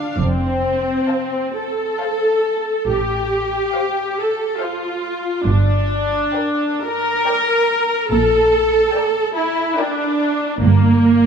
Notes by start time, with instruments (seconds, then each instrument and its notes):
Already playing: viola section D4, violin section F5
0.19 double bass section F1, cello section F2, viola section C4
1.09 violin section C5 F5 A5
1.58 viola section A4
2.00 violin section C5 F5 A5
2.87 double bass section A1, cello section A2, viola section G4
3.75 violin section C5 F5
4.19 viola section A4
4.60 viola section F4, violin section C5 F5
5.45 double bass section G1, cello section G2, viola section D4
6.34 violin section A#4 D5 G5
6.82 viola section A#4
7.25 violin section A#4 D5 G5
8.10 double bass section A#1, cello section A#2, viola section A4
8.95 violin section A#4 D5 G5
9.35 viola section E4
9.77 viola section D4, violin section A#4 D5 G5
10.60 double bass section G1, cello section G2, viola section A#3